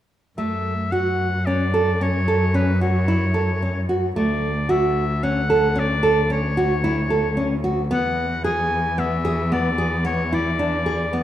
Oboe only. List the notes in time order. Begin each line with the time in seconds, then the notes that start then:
0.38 E5
0.92 F#5
1.46 D5
2.02 C#5
2.55 B4
2.82 C#5
4.17 D5
4.71 E5
5.24 F#5
5.80 D5
6.33 C#5
7.93 F#5
8.44 G#5
8.99 E5
9.53 D5
10.06 C#5
10.34 D5